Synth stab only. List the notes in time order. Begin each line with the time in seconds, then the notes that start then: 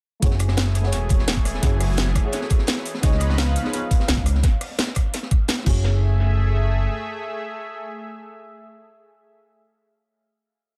0.20 A3 E4 F#4
0.24 G#4 C#5
0.81 A3 E4 F#4
0.85 G#4 C#5
1.60 A3 E4 F#4
1.64 G#4 C#5
2.21 A3 E4 F#4
2.26 G#4 C#5
3.00 B3 D#4 F4
3.04 G#4 C#5
3.62 B3 D#4 F4
3.66 G#4 C#5
5.62 A3 E4
5.66 F#4 G#4 C#5